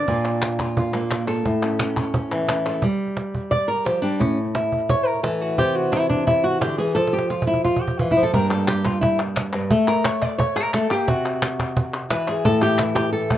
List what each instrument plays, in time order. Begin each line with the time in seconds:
Already playing: nylon-string guitar D5
0.08 nylon-string guitar A#2 A#3 D4 F4, cajon bass, cajon slap
0.42 cajon slap, clap
0.59 nylon-string guitar F4, cajon bass, clap
0.77 nylon-string guitar F4, cajon bass
0.94 nylon-string guitar A#3, cajon slap
1.11 cajon slap, clap
1.28 nylon-string guitar A4, clap
1.45 nylon-string guitar A2, cajon bass, cajon slap
1.64 nylon-string guitar C#4
1.80 nylon-string guitar C#4, cajon slap, clap
1.97 nylon-string guitar C#4, cajon bass, clap
2.14 nylon-string guitar C#4, cajon bass
2.31 nylon-string guitar E3, cajon slap
2.48 nylon-string guitar C#4, cajon slap, clap
2.66 nylon-string guitar A4, clap
2.82 nylon-string guitar G3, cajon bass
3.17 cajon slap
3.34 cajon bass
3.51 nylon-string guitar D5, cajon bass
3.68 nylon-string guitar A#4, cajon slap
3.85 nylon-string guitar F3 G4, cajon slap
4.02 nylon-string guitar G3 D4
4.20 nylon-string guitar A2 C#4, cajon bass
4.38 cajon slap
4.55 nylon-string guitar E4, cajon slap
4.72 cajon bass
4.89 nylon-string guitar C#5, cajon bass
5.07 nylon-string guitar A#4
5.23 nylon-string guitar E3 A4, cajon slap
5.41 nylon-string guitar F#4
5.58 nylon-string guitar C3 G4, cajon bass
5.75 nylon-string guitar F#4
5.92 nylon-string guitar E4, cajon slap
6.09 nylon-string guitar D4, cajon bass
6.27 nylon-string guitar E4, cajon bass
6.44 nylon-string guitar F#4
6.61 nylon-string guitar D3 G4, cajon slap
6.78 nylon-string guitar E3 G#4
6.95 nylon-string guitar F3 A4, cajon slap
7.07 cajon slap
7.13 nylon-string guitar G4
7.19 cajon slap
7.30 nylon-string guitar F4, cajon slap
7.42 cajon bass
7.47 nylon-string guitar E4
7.54 cajon bass
7.64 nylon-string guitar F4, cajon bass
7.76 cajon bass
7.81 nylon-string guitar G4
7.88 cajon bass
7.99 nylon-string guitar E3 F4, cajon bass
8.11 nylon-string guitar E4, cajon bass
8.17 nylon-string guitar F3
8.22 nylon-string guitar A4, cajon bass
8.34 nylon-string guitar G2 G3 A#3 D4 A#4, cajon bass
8.51 nylon-string guitar A4
8.68 nylon-string guitar G4, cajon slap, clap
8.85 nylon-string guitar F4, cajon bass, clap
9.01 nylon-string guitar E4, cajon bass
9.20 cajon slap
9.36 cajon slap, clap
9.53 nylon-string guitar G2, clap
9.70 nylon-string guitar A3 A4, cajon bass
9.88 nylon-string guitar A#4
10.04 nylon-string guitar C#5, cajon slap, clap
10.22 nylon-string guitar D5, cajon bass, clap
10.38 nylon-string guitar C#5, cajon bass
10.56 nylon-string guitar A#4, cajon slap
10.74 nylon-string guitar A3 A4, cajon slap, clap
10.90 nylon-string guitar A#3 G4, clap
11.08 nylon-string guitar C3 F#4, cajon bass
11.42 cajon slap, clap
11.59 cajon bass, clap
11.77 cajon bass
11.94 cajon slap
12.10 nylon-string guitar E3 B4, cajon slap, clap
12.28 nylon-string guitar G#4, clap
12.45 nylon-string guitar A2 A4, cajon bass
12.62 nylon-string guitar G4
12.78 nylon-string guitar E4, cajon slap, clap
12.95 nylon-string guitar G4, cajon slap, clap
13.13 nylon-string guitar A4
13.30 nylon-string guitar A3, cajon bass